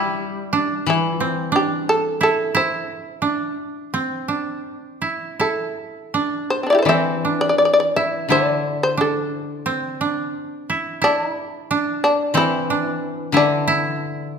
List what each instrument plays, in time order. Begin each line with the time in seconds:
Already playing: koto G3 C4 D4 E4, shamisen G4
0.53 koto D4
0.87 koto E3, shamisen E4
1.20 koto C4
1.52 koto D4, shamisen G4
1.89 shamisen A4
2.21 koto E4, shamisen A4
2.55 koto E4, shamisen C5
3.22 koto D4
3.94 koto C4
4.28 koto D4
5.02 koto E4
5.40 koto E4, shamisen A4
6.14 koto D4
6.50 shamisen C5
6.63 shamisen C4 D4
6.70 shamisen E4 D5
6.75 shamisen G4 A4
6.82 koto E3, shamisen C5 D5
6.89 koto C4, shamisen E5
7.25 koto D4
7.41 shamisen D5
7.49 shamisen D5
7.58 shamisen D5
7.65 shamisen D5
7.73 shamisen D5
7.80 shamisen D5
7.96 koto E4, shamisen E5
8.29 koto D3 E4, shamisen D5
8.83 shamisen C5
8.97 koto D4, shamisen A4
9.66 koto C4
10.01 koto D4
10.70 koto E4
11.02 shamisen D4, koto E4
11.32 shamisen E4
11.71 koto D4
12.04 shamisen D4
12.34 koto E3 C4, shamisen E4
12.70 koto D4
12.86 shamisen D#4
12.98 shamisen D4
13.32 koto D3 E4
13.37 shamisen D4
13.68 koto E4